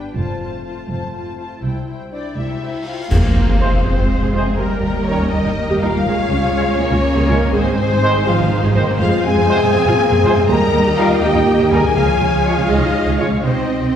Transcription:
Already playing: french horn section G3 B3, viola section D4, violin section B4 G5
0.15 double bass section F1, cello section F2, french horn section A3 C4, viola section F4, violin section C5 A5
0.40 viola section F4, violin section C5 A5
0.65 viola section F4, violin section C5 A5
0.88 double bass section F1, cello section F2, viola section F4, violin section C5 A5
1.13 viola section F4, violin section C5 A5
1.37 viola section F4, violin section C5 A5
1.62 double bass section C2, cello section C2, french horn section G3 E4, viola section E4, violin section C5 G5, cymbal swell
1.87 viola section E4, violin section C5 G5
2.11 french horn section D4, viola section E4, violin section C5 D5 G5, flute section D5
2.36 double bass section C2, cello section C2, viola section E4, french horn section E4, violin section C5 E5 G5, flute section E5
2.61 viola section E4, violin section C5 G5
2.86 viola section E4, french horn section F4, violin section C5 F5 G5, flute section F5
3.11 timpani F2, double bass section F2, cello section A#3, string section C4 G#4 C5 F5, viola section G#4 C5, concert bass drum, crash, sub drop
3.35 double bass section F2, viola section C4
3.47 double bass section F2, viola section G#4
3.60 trombone section C3 G#3, trumpet section C5
3.72 double bass section F2, viola section C4
3.83 double bass section F2, cello section G#3, french horn section C4, viola section G#4, flute section C5, violin section C5
3.97 double bass section F2, viola section F4
4.21 double bass section F2, viola section G#4
4.33 double bass section F2, trombone section C3 G#3, french horn section G#3, viola section F4, flute section G#4, violin section G#4, trumpet section C5
4.46 double bass section F2, viola section C4
4.57 double bass section D#2, cello section G3, french horn section A#3, string section A#3 A#4 D#5 G5, viola section G4 A#4, violin section A#4, flute section A#4
4.82 double bass section D#2, viola section A#3, french horn section A#3, violin section A#4, flute section A#4
4.94 double bass section D#2, viola section G4
5.06 trombone section D#3 G3, french horn section C#4, trumpet section A#4, flute section C#5, violin section C#5
5.19 double bass section D#2, viola section A#3
5.30 double bass section D#2, cello section G3, french horn section D#4, viola section G4, violin section D#5, flute section D#5
5.44 double bass section D#2, viola section D#4
5.69 double bass section D#2, viola section G4
5.80 double bass section D#2, viola section D#4, french horn section F4, trumpet section A#4, violin section F5, flute section F5
5.84 trombone section D#3 G3
5.94 double bass section D#2, viola section A#3
6.05 double bass section C#2, cello section G#3, string section C#4 G#4 C#5 G#5, viola section G#4 C#5
6.30 double bass section C#2, cello section G3, viola section C#4
6.42 double bass section C#2, viola section G#4
6.55 trombone section C#3 G#3, cello section G#3, trumpet section C#5
6.66 double bass section C#2, viola section C#4
6.79 double bass section C#2, cello section A#3, french horn section C#4, viola section G#4, violin section C#5, flute section C#5
6.92 double bass section C#2, viola section F4
7.16 double bass section C#2, viola section G#4
7.28 double bass section C#2, trombone section C#3 G#3, french horn section A#3, viola section F4, violin section A#4, flute section A#4, trumpet section C#5
7.40 double bass section C#2, viola section C#4
7.52 double bass section G#1, cello section G#3, french horn section C4, string section D#4 C5, viola section G#4 C5, violin section C5, flute section C5
7.77 double bass section G#1, viola section C4, french horn section C4, violin section C5, flute section C5
7.90 double bass section G#1, viola section G#4
8.02 trombone section D#3 G#3, trumpet section C5
8.15 double bass section G#1, viola section C4
8.26 double bass section G#1, cello section F3, french horn section F4, viola section G#4, flute section F5, violin section F5
8.39 double bass section G#1, viola section D#4
8.52 cello section D#3
8.63 double bass section G#1, viola section G#4
8.76 double bass section G#1, trombone section D#3 G#3, cello section A#3, viola section D#4, trumpet section C5
8.87 double bass section G#1, viola section C4
8.98 double bass section F2, cello section G#3, string section C4 F5, french horn section F4, viola section G#4, violin section F5, flute section F5
9.23 double bass section F2, viola section C4, french horn section G#4, violin section G#5, flute section G#5
9.36 double bass section F2, viola section G#4
9.49 trombone section C3 G#3, trumpet section C5
9.62 double bass section F2, viola section C4
9.74 double bass section F2, cello section C4, viola section G#4
9.86 double bass section F2, viola section F4
9.99 cello section A#3
10.11 double bass section F2, viola section G#4
10.22 double bass section F2, trombone section C3 G#3, cello section G#3, viola section F4, trumpet section C5
10.36 double bass section F2, viola section C4
10.47 double bass section D#2, cello section G3, string section D#4 G4 A#4 G5, viola section G4 D#5, french horn section A#4, violin section A#5, flute section A#5
10.72 double bass section D#2, viola section A#3
10.84 double bass section D#2, viola section G4
10.97 trombone section D#3 G3, french horn section F4, trumpet section A#4, violin section F5, flute section F5
11.08 double bass section D#2, viola section A#3
11.21 double bass section D#2, cello section A#3, viola section G4, french horn section G4, violin section G5, flute section G5
11.33 double bass section D#2, viola section D#4
11.59 double bass section D#2, viola section G4
11.71 double bass section D#2, trombone section D#3 G3, viola section D#4, french horn section G#4, trumpet section A#4, violin section G#5, flute section G#5
11.83 double bass section D#2, viola section A#3
11.95 double bass section C#2, cello section F3, string section F4 G#4 C#5 F5, viola section G#4 F5
12.20 double bass section C#2, viola section C#4
12.33 double bass section C#2, viola section G#4
12.45 trombone section F3 G#3, trumpet section C#5
12.57 double bass section C#2, viola section C#4
12.69 double bass section C#2, cello section G#3, french horn section D#4, viola section G#4, flute section D#5, violin section D#5
12.81 double bass section C#2, viola section F4
13.06 double bass section C#2, viola section G#4
13.18 double bass section C#2, trombone section F3 G#3, french horn section C#4, viola section F4, violin section C#5, flute section C#5, trumpet section C#5
13.31 double bass section C#2, viola section C#4
13.42 double bass section C2, string section C4 G4 C5 G5, cello section C4, french horn section D#4, viola section C5, violin section D#5, flute section D#5
13.68 double bass section C2, viola section D#4
13.80 double bass section C2, viola section C5
13.92 french horn section D#4, flute section D#5, violin section D#5

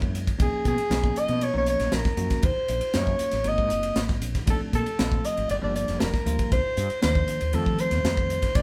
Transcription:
Already playing: fretless electric bass F#2, tine electric piano G#3 A#3 C#4 E4
0.02 kick
0.15 hi-hat pedal, ride
0.27 kick, ride
0.38 fretless electric bass B1, tine electric piano F3 A#3 C#4 D#4, soprano saxophone G#4, kick, ride
0.65 fretless electric bass B2, soprano saxophone G#4, kick, hi-hat pedal, ride
0.78 ride
0.90 fretless electric bass B1, tine electric piano F3 A#3 C#4 D#4, snare, ride
1.04 kick
1.16 soprano saxophone D#5, hi-hat pedal, ride
1.28 fretless electric bass B2, ride
1.41 soprano saxophone C#5, ride
1.54 fretless electric bass B1, tine electric piano F3 A#3 C#4 D#4
1.58 soprano saxophone C#5
1.66 soprano saxophone C#5, hi-hat pedal, ride
1.80 fretless electric bass A#1, snare, ride
1.92 fretless electric bass A#1, soprano saxophone A#4, snare, ride
2.05 kick, snare
2.17 fretless electric bass F#2, tine electric piano F3 A#3 C#4 F#4, hi-hat pedal, ride
2.30 muted fretless electric bass stroke, kick, snare, ride
2.43 fretless electric bass D#2, soprano saxophone C5, kick, ride
2.56 muted fretless electric bass stroke
2.68 fretless electric bass A#1, hi-hat pedal, ride
2.81 ride
2.94 fretless electric bass F#2, tine electric piano F#3 A#3 C#4 F4, soprano saxophone C#5, snare, ride
3.07 kick
3.19 muted fretless electric bass stroke, hi-hat pedal, ride
3.31 fretless electric bass A1, snare, ride
3.44 fretless electric bass G#1, tine electric piano F#3 A#3 C4 D#4, ride
3.48 soprano saxophone D#5
3.58 fretless electric bass G#2, kick
3.70 fretless electric bass F#1, hi-hat pedal, ride
3.83 ride
3.96 fretless electric bass G#1, snare, ride
4.09 kick, snare
4.22 fretless electric bass A#1, hi-hat pedal, ride
4.35 kick, snare, ride
4.46 fretless electric bass A#1, tine electric piano F3 A3 C4 D4, kick, ride
4.50 soprano saxophone A4
4.73 fretless electric bass A#2, soprano saxophone A4, kick, hi-hat pedal, ride
4.86 ride
4.98 fretless electric bass A#1, tine electric piano F3 A3 C4 F4, snare, ride
5.12 kick
5.24 soprano saxophone D#5, hi-hat pedal, ride
5.37 fretless electric bass G#1, ride
5.49 fretless electric bass G1, soprano saxophone D5, ride
5.61 fretless electric bass G1, tine electric piano F3 G3 A#3 D4, soprano saxophone D5
5.76 soprano saxophone D5, hi-hat pedal, ride
5.88 fretless electric bass F1, snare, ride
6.00 fretless electric bass F1, soprano saxophone A#4, snare, ride
6.14 kick, snare
6.25 fretless electric bass D2, tine electric piano F3 G3 A#3 F4, hi-hat pedal, ride
6.39 kick, ride
6.52 fretless electric bass C2, soprano saxophone C5, kick, ride
6.65 muted fretless electric bass stroke
6.77 fretless electric bass G2, hi-hat pedal, ride
6.90 muted fretless electric bass stroke, ride
7.02 fretless electric bass D#2, tine electric piano D#3 F3 A#3 D4, soprano saxophone C5, snare, ride
7.15 kick
7.28 muted fretless electric bass stroke, hi-hat pedal, ride
7.41 fretless electric bass D#2, ride
7.53 fretless electric bass F2, tine electric piano D#3 G3 A3 C4, soprano saxophone A4, ride
7.66 fretless electric bass F3, kick
7.78 soprano saxophone C5, hi-hat pedal, ride
7.91 fretless electric bass F2, snare, ride
8.04 fretless electric bass F2, snare, ride
8.17 kick
8.30 hi-hat pedal, ride
8.42 kick, snare, ride
8.55 fretless electric bass A#1, tine electric piano D3 F3 G#3 C4, soprano saxophone D5, kick, ride

